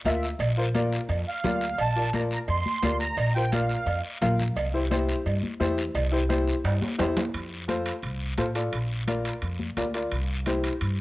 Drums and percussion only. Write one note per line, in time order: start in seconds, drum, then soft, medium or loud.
0.05 cowbell medium
0.05 high conga medium
0.05 short guiro medium
0.23 short guiro medium
0.40 cowbell loud
0.40 long guiro medium
0.75 cowbell medium
0.75 high conga medium
0.75 short guiro medium
0.93 short guiro medium
1.10 cowbell medium
1.10 long guiro medium
1.44 cowbell medium
1.44 high conga medium
1.44 low conga medium
1.44 low timbale medium
1.44 short guiro medium
1.61 short guiro medium
1.78 cowbell loud
1.78 long guiro medium
2.13 cowbell medium
2.13 high conga medium
2.13 short guiro medium
2.31 short guiro medium
2.48 cowbell medium
2.48 long guiro medium
2.66 high conga medium
2.83 cowbell medium
2.83 high conga medium
2.83 low timbale medium
2.83 short guiro medium
3.00 short guiro medium
3.17 cowbell loud
3.17 long guiro medium
3.52 cowbell medium
3.52 high conga medium
3.52 short guiro medium
3.69 short guiro medium
3.87 cowbell medium
3.87 long guiro medium
4.22 cowbell medium
4.22 high conga medium
4.22 low conga medium
4.22 low timbale medium
4.22 short guiro medium
4.39 low conga medium
4.39 short guiro medium
4.56 cowbell loud
4.56 long guiro medium
4.91 cowbell medium
4.91 high conga medium
4.91 short guiro medium
5.09 short guiro medium
5.26 cowbell medium
5.26 long guiro medium
5.43 high conga medium
5.60 cowbell medium
5.60 high conga medium
5.60 short guiro medium
5.78 short guiro medium
5.95 cowbell loud
5.95 long guiro medium
6.30 cowbell medium
6.30 high conga medium
6.30 short guiro medium
6.47 short guiro medium
6.65 cowbell medium
6.65 high timbale medium
6.65 long guiro medium
6.82 high conga medium
6.82 low timbale medium
6.99 cowbell medium
6.99 low conga medium
6.99 low timbale loud
6.99 short guiro medium
7.17 low conga medium
7.17 low timbale medium
7.17 short guiro medium
7.34 high timbale medium
7.34 long guiro medium
7.69 high conga medium
7.69 high timbale medium
7.69 short guiro medium
7.86 high timbale medium
7.86 short guiro medium
8.02 high timbale medium
8.02 long guiro medium
8.38 high conga medium
8.38 high timbale medium
8.38 short guiro medium
8.55 high timbale medium
8.55 short guiro medium
8.73 high timbale medium
8.73 long guiro medium
9.08 high conga medium
9.08 high timbale medium
9.08 short guiro medium
9.25 high timbale medium
9.25 short guiro medium
9.42 high timbale medium
9.42 long guiro medium
9.60 high conga medium
9.77 high conga medium
9.77 high timbale medium
9.77 low timbale medium
9.77 short guiro medium
9.94 high timbale medium
9.94 short guiro medium
10.12 high timbale medium
10.12 long guiro medium
10.46 high conga medium
10.46 high timbale medium
10.46 short guiro medium
10.64 high timbale medium
10.64 short guiro medium
10.81 high timbale medium
10.81 long guiro medium